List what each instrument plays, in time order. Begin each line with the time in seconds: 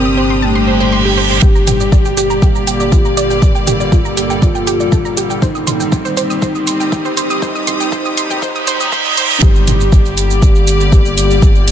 Already playing: analog synth bass G1, synth drone G2 A#2, ambient pad G3 D4 G4, soft synth lead C4, string section C4 G4 D#6
0.05 synth arpeggio sound D#6
0.17 synth arpeggio sound C5
0.30 synth arpeggio sound C6
0.42 soft synth lead A3, synth arpeggio sound A5, reverse cymbal
0.55 synth arpeggio sound C6
0.67 synth arpeggio sound C5
0.80 synth arpeggio sound C5
0.92 synth arpeggio sound C6
1.05 synth arpeggio sound G4
1.17 synth arpeggio sound C5
1.30 synth arpeggio sound C5
1.42 analog synth bass G1, synth drone G2 A#2, ambient pad D3 G3 A#3 G4, soft synth lead G4, synth arpeggio sound G4, kick, riser, shaker
1.55 synth arpeggio sound A#5, shaker
1.67 synth arpeggio sound G5, closed hi-hat, mid tom, shaker
1.80 synth arpeggio sound D5, shaker
1.84 string section D5
1.92 synth arpeggio sound D5, kick, shaker
2.05 synth arpeggio sound G4, shaker
2.17 synth arpeggio sound G4, closed hi-hat, shaker
2.30 synth arpeggio sound A#5, shaker
2.42 synth arpeggio sound G4, kick, shaker
2.55 synth arpeggio sound A#5, shaker
2.67 synth arpeggio sound G5, closed hi-hat, shaker
2.80 synth arpeggio sound D5, shaker
2.92 synth arpeggio sound F4, soft synth lead G4, kick, shaker
3.05 synth arpeggio sound A#5, shaker
3.17 synth arpeggio sound D5, closed hi-hat, shaker
3.30 synth arpeggio sound G5, shaker
3.42 ambient pad A4, synth arpeggio sound D5, kick, shaker
3.55 synth arpeggio sound G5, shaker
3.67 synth arpeggio sound G4, closed hi-hat, mid tom, shaker
3.80 synth arpeggio sound D5, shaker
3.92 synth arpeggio sound F4, kick, shaker
4.05 synth arpeggio sound A#5, shaker
4.17 synth arpeggio sound G4, closed hi-hat, shaker
4.30 synth arpeggio sound G5, shaker
4.42 soft synth lead F4, synth arpeggio sound D5, kick, shaker
4.55 synth arpeggio sound G5, shaker
4.67 synth arpeggio sound G4, closed hi-hat, shaker
4.80 synth arpeggio sound D5, shaker
4.92 synth arpeggio sound A4, kick, shaker
5.05 synth arpeggio sound A#5, shaker
5.17 synth arpeggio sound G4, closed hi-hat, shaker
5.30 synth arpeggio sound G5, shaker
5.42 analog synth bass G1, ambient pad C4 G4, string section C4, soft synth lead D#4, synth arpeggio sound C5, kick, shaker
5.55 synth arpeggio sound D#6, shaker
5.67 synth arpeggio sound C6, closed hi-hat, mid tom, shaker
5.80 string section G4, synth arpeggio sound G5, shaker
5.92 synth arpeggio sound G5, kick, shaker
6.05 synth arpeggio sound C5, shaker
6.17 synth arpeggio sound C5, closed hi-hat, shaker
6.30 synth arpeggio sound D#6, shaker
6.42 soft synth lead D#4, synth arpeggio sound C5, kick, shaker
6.55 synth arpeggio sound D#6, shaker
6.67 synth arpeggio sound C6, closed hi-hat, shaker
6.74 string section D#6
6.80 synth arpeggio sound G5, shaker
6.92 synth arpeggio sound G5, kick, shaker
7.05 synth arpeggio sound C5, shaker
7.17 synth arpeggio sound C5, closed hi-hat, shaker
7.30 synth arpeggio sound D#6, shaker
7.42 ambient pad D#4, soft synth lead D#4, synth arpeggio sound C5, kick, shaker
7.55 synth arpeggio sound D#6, shaker
7.67 synth arpeggio sound C6, closed hi-hat, mid tom, shaker
7.80 synth arpeggio sound G5, shaker
7.92 soft synth lead D#4, synth arpeggio sound C5, kick, shaker
8.05 synth arpeggio sound D#6, shaker
8.17 synth arpeggio sound C6, closed hi-hat, shaker
8.30 synth arpeggio sound G5, mid tom, shaker
8.42 soft synth lead D#4, synth arpeggio sound C5, kick, reverse cymbal, shaker
8.55 synth arpeggio sound D#6, shaker
8.67 soft synth lead D#4, synth arpeggio sound C5, closed hi-hat, shaker
8.80 synth arpeggio sound D#6, shaker
8.92 soft synth lead D#4, synth arpeggio sound C5, kick, shaker
9.05 synth arpeggio sound D#6, shaker
9.17 soft synth lead D#4, synth arpeggio sound C5, closed hi-hat, shaker
9.30 synth arpeggio sound D#6, shaker
9.42 analog synth bass G1, ambient pad D3 G3 A#3 G4, soft synth lead G4, kick, shaker
9.55 shaker
9.67 closed hi-hat, mid tom, shaker
9.80 shaker
9.89 string section D5, kick, shaker
10.05 shaker
10.17 closed hi-hat, shaker
10.30 shaker
10.42 kick, shaker
10.55 shaker
10.67 closed hi-hat, shaker
10.80 shaker
10.92 soft synth lead G4, kick, shaker
11.06 shaker
11.18 closed hi-hat, shaker
11.31 shaker
11.42 ambient pad A4, kick, shaker
11.56 shaker
11.68 closed hi-hat, shaker